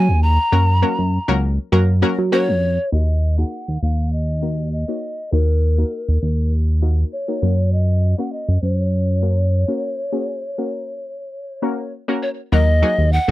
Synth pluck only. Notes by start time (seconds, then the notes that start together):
Already playing: F#3 A#3 C#4 F#4 A#4
0.52 F#3 A#3 C#4 F#4 A#4
0.82 F#3 A#3 C#4 F#4 A#4
1.28 F#3 A#3 C#4 F#4 A#4
1.72 F#3 A#3 C#4 F#4 A#4
2.02 F#3 A#3 C#4 F#4 A#4
2.32 F#3 A#3 C#4 F#4 A#4
2.92 A#3 D#4 F#4 A#4
3.38 A#3 D#4 F#4 G#4
4.42 A#3 D#4 F#4 A#4
4.88 A#3 D#4 F#4 C#5
5.32 A#3 D#4 F#4 C#5
5.78 A#3 D#4 F#4 A#4
6.82 A#3 D#4 F#4 A#4
7.28 A#3 D#4 F#4 A#4
7.42 A#3 C#4 F#4 A#4
8.18 A#3 C#4 F#4 A#4
9.22 A#3 C#4 F#4 A#4
9.68 A#3 C#4 F#4 A#4
10.12 A#3 C#4 F#4 G#4
10.58 A#3 C#4 F#4 A#4
11.62 A#3 C#4 F#4 A#4
12.08 A#3 C#4 F#4 A#4
12.52 F#3 A#3 D#4 F#4 A#4
12.82 F#3 A#3 D#4 F#4 G#4
13.28 F#3